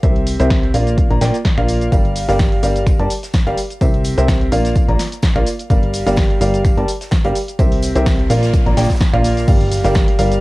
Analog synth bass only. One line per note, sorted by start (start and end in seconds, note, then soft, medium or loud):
0.03 0.37 C2 loud
0.40 0.72 C2 medium
0.74 1.08 A#1 medium
1.10 1.19 A#1 medium
1.21 1.31 A#1 loud
1.58 1.90 A#1 loud
1.92 2.26 G1 loud
2.28 2.61 G1 medium
2.63 2.97 G1 medium
2.99 3.08 G1 loud
3.47 3.55 G1 medium
3.81 4.15 C2 loud
4.18 4.50 C2 medium
4.52 4.86 A#1 medium
4.88 4.97 A#1 loud
5.36 5.44 A#1 loud
5.70 6.04 G1 loud
6.07 6.39 G1 medium
6.41 6.75 G1 loud
6.77 6.86 G1 loud
7.25 7.33 G1 medium
7.59 7.93 C2 medium
7.95 8.28 C2 loud
8.30 8.64 A#1 loud
8.66 8.75 A#1 loud
8.77 8.87 A#1 loud
9.13 9.46 A#1 loud
9.48 9.82 G1 loud
9.84 10.17 G1 loud
10.19 10.40 G1 loud